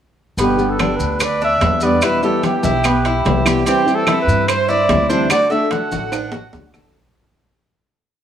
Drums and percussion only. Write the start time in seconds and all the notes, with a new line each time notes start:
0.38 high conga, high timbale, maracas
0.59 high conga, maracas
0.79 high conga, high timbale, low timbale, claves, maracas
1.00 high conga, maracas
1.20 high conga, high timbale, claves, maracas
1.41 high conga, maracas
1.61 high conga, high timbale, low timbale, maracas
1.81 maracas
2.02 high conga, high timbale, claves, maracas
2.23 high conga, maracas
2.43 high conga, high timbale, low timbale, maracas
2.63 high conga, maracas
2.84 high conga, high timbale, claves, maracas
3.05 high conga, high timbale, maracas
3.25 high conga, high timbale, low timbale, maracas
3.46 high conga, high timbale, claves, maracas
3.66 high conga, high timbale, maracas
3.87 high conga, maracas
4.07 high conga, high timbale, low timbale, claves, maracas
4.29 high conga, maracas
4.48 high conga, high timbale, claves, maracas
4.70 high conga, maracas
4.89 high conga, high timbale, low timbale, maracas
5.10 maracas
5.30 high conga, high timbale, claves, maracas
5.51 high conga, maracas
5.71 high conga, high timbale, low timbale, maracas
5.92 high conga, maracas
6.12 high conga, high timbale, claves, maracas
6.32 high conga, low timbale, maracas
6.53 high conga, low timbale, maracas
6.74 low conga, low timbale, claves, maracas